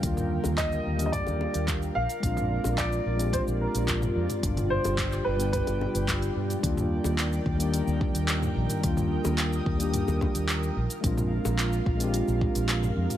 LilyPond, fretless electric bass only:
\new Staff \with { instrumentName = "Fretless electric bass" } { \clef bass \time 4/4 \key ees \major \tempo 4 = 109 ees,8 r16 ees,8 r16 ees,8 r16 ees,16 r16 ees,8 r16 bes,,16 r16 | bes,,8 r16 bes,,8 r16 bes,,8 r16 bes,,16 r16 bes,,8 r16 f,16 r16 | g,,8 r16 g,,8 r16 g,,8 r16 g,,16 r16 g,,8 r16 g,16 r16 | ees,8 r16 ees,8 r16 ees,8 r16 ees,16 r16 ees,8 r16 bes,,16 r16 |
ees,8 r16 ees,8 r16 ees,8 r16 ees,16 r16 ees,8 r16 bes,,16 r16 | bes,,8 r16 bes,,8 r16 bes,,8 r16 bes,,16 r16 bes,,8 r16 f,16 r16 | }